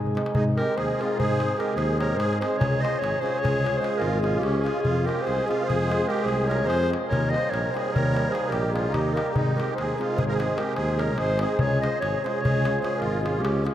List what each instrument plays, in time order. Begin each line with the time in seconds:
Already playing: tuba G#2, hammered dulcimer G#3, clarinet G#4
0.06 darbuka dum
0.15 hammered dulcimer G#3 C4 D#4 G#4, darbuka tek
0.26 darbuka tek
0.34 tuba G#2, accordion D#4, clarinet G#4, darbuka dum
0.57 hammered dulcimer G#3 C4 D#4 G#4, accordion G4, clarinet A#4, darbuka tek
0.76 tuba D#2, accordion G#4, clarinet C5, darbuka tek
0.98 hammered dulcimer G#3 C4, accordion F4, clarinet G#4, darbuka tek
1.02 hammered dulcimer D#4 G#4
1.18 tuba G#2, accordion G#4, clarinet C5, darbuka dum
1.40 hammered dulcimer G#3 C4 D#4 G#4, darbuka tek
1.51 darbuka tek
1.56 hammered dulcimer G#3 C4 D#4 G#4, accordion G4, clarinet A#4, darbuka tek
1.74 tuba D#2, accordion G#4, clarinet C5, darbuka tek
1.89 darbuka tek
1.99 hammered dulcimer G#3 C4 D#4 G#4, accordion A#4, clarinet C#5, darbuka tek
2.16 tuba G#2, accordion G#4, clarinet C5, darbuka tek
2.31 darbuka tek
2.40 hammered dulcimer G#3 C4 D#4 G#4, accordion G#4, clarinet C5, darbuka tek
2.58 tuba C#2, accordion G#4, clarinet C#5, darbuka dum
2.78 hammered dulcimer G#3, accordion C5, clarinet D#5
2.83 hammered dulcimer C#4 F4 G#4, darbuka tek
2.99 tuba G#1, accordion G#4, clarinet C#5
3.04 darbuka tek
3.20 hammered dulcimer G#3 C#4 F4 G#4, accordion G#4, clarinet C5
3.26 darbuka tek
3.39 accordion G#4, clarinet C#5
3.44 tuba C#2, darbuka dum
3.64 hammered dulcimer G#3 C#4 F4 G#4, darbuka tek
3.77 hammered dulcimer G#3, accordion G#4, clarinet C5
3.81 hammered dulcimer C#4 F4 G#4, darbuka tek
3.97 accordion F4, clarinet A#4
4.01 tuba G#1, darbuka tek
4.13 darbuka tek
4.19 hammered dulcimer G#3 C#4 F4, accordion F4, clarinet G#4
4.23 hammered dulcimer G#4, darbuka tek
4.39 accordion C#4, clarinet G4
4.43 tuba C#2, darbuka tek
4.56 darbuka tek
4.60 hammered dulcimer G#3 C#4, accordion F4, clarinet G#4
4.65 hammered dulcimer F4 G#4, darbuka tek
4.79 accordion F4, clarinet G#4
4.85 tuba F2, darbuka dum
5.05 hammered dulcimer G#3 C4 F4 G#4, accordion G4, clarinet A#4
5.09 darbuka tek
5.22 accordion G#4, clarinet C5
5.27 tuba C2, darbuka tek
5.46 hammered dulcimer G#3 C4 F4 G#4, accordion F4, clarinet G#4
5.51 darbuka tek
5.64 accordion G#4, clarinet C5
5.69 tuba F2, darbuka dum
5.88 hammered dulcimer G#3 C4 F4 G#4, darbuka tek
6.02 darbuka tek
6.07 hammered dulcimer G#3 C4 F4 G#4, accordion G4, clarinet A#4, darbuka tek
6.23 tuba C2, accordion G#4, clarinet C5
6.28 darbuka tek
6.41 darbuka tek
6.47 hammered dulcimer G#3 C4 F4 G#4, accordion A#4, clarinet C#5
6.51 darbuka tek
6.66 tuba F2, accordion G#4, clarinet C5
6.70 darbuka tek
6.83 darbuka tek
6.89 hammered dulcimer G#3 C4 F4 G#4
6.93 darbuka tek
7.08 tuba D#2, accordion A#4, clarinet C#5
7.12 darbuka dum
7.24 darbuka tek
7.29 hammered dulcimer G3 A#3 D#4 G4, accordion C5, clarinet D#5
7.34 darbuka tek
7.44 darbuka tek
7.50 tuba A#1, accordion A#4, clarinet C#5, darbuka tek
7.65 darbuka tek
7.71 hammered dulcimer G3 A#3 D#4 G4, accordion G#4, clarinet C5
7.77 darbuka tek
7.87 darbuka tek
7.92 tuba D#2, accordion A#4, clarinet C#5, darbuka dum
8.13 hammered dulcimer G3 A#3 D#4 G4, darbuka tek
8.26 clarinet C5, darbuka tek
8.30 hammered dulcimer G3 A#3 D#4 G4, accordion G#4
8.35 darbuka tek
8.45 accordion G4, clarinet A#4, darbuka tek
8.51 tuba A#1, darbuka tek
8.66 darbuka tek
8.71 hammered dulcimer G3 A#3 D#4 G4, accordion F4, clarinet G#4
8.76 darbuka tek
8.85 darbuka tek
8.90 tuba D#2, accordion D#4, clarinet G4, darbuka tek, darbuka dum
9.13 hammered dulcimer G3 A#3 D#4 G4, accordion G4, clarinet A#4
9.17 darbuka tek
9.27 darbuka tek
9.33 tuba G#1, accordion D#4, clarinet G#4, darbuka dum
9.56 hammered dulcimer G#3 C4 D#4 G#4, accordion G4, clarinet A#4, darbuka tek
9.75 tuba D#2, accordion G#4, clarinet C5, darbuka tek
9.96 hammered dulcimer G#3 C4 D#4 G#4, accordion F4, clarinet G#4
10.01 darbuka tek
10.16 accordion G#4, clarinet C5, darbuka dum
10.20 tuba G#1
10.26 accordion A#4, clarinet C#5
10.31 accordion G#4, clarinet C5
10.40 hammered dulcimer G#3 C4 D#4 G#4, darbuka tek
10.49 darbuka tek
10.56 hammered dulcimer G#3 C4 D#4 G#4, accordion G4, clarinet A#4, darbuka tek
10.75 tuba D#2, accordion G#4, clarinet C5, darbuka tek
10.89 darbuka tek
10.97 hammered dulcimer G#3 C4 D#4 G#4, accordion A#4, clarinet C#5, darbuka tek
11.17 tuba G#1, accordion G#4, clarinet C5, darbuka tek
11.29 darbuka tek
11.39 hammered dulcimer G#3 C4 D#4 G#4, accordion G#4, clarinet C5, darbuka tek
11.59 tuba C#2, accordion G#4, clarinet C#5, darbuka dum
11.82 hammered dulcimer G#3 C#4 F4 G#4, accordion C5, clarinet D#5, darbuka tek
12.00 tuba G#1, accordion G#4, clarinet C#5, darbuka tek
12.24 hammered dulcimer G#3 C#4 F4 G#4, accordion G#4, clarinet C5, darbuka tek
12.41 tuba C#2, accordion G#4, clarinet C#5
12.45 darbuka dum
12.65 hammered dulcimer G#3 C#4 F4 G#4, darbuka tek
12.75 darbuka tek
12.80 hammered dulcimer G#3 C#4 F4 G#4, accordion G#4, clarinet C5
12.84 darbuka tek
12.98 tuba G#1, accordion F4, clarinet A#4, darbuka tek
13.14 darbuka tek
13.20 hammered dulcimer G#3 C#4 F4 G#4, accordion F4, clarinet G#4
13.26 darbuka tek
13.39 accordion C#4, clarinet G4
13.43 tuba C#2, darbuka tek
13.56 darbuka tek
13.64 hammered dulcimer G#3 C#4 F4 G#4, darbuka tek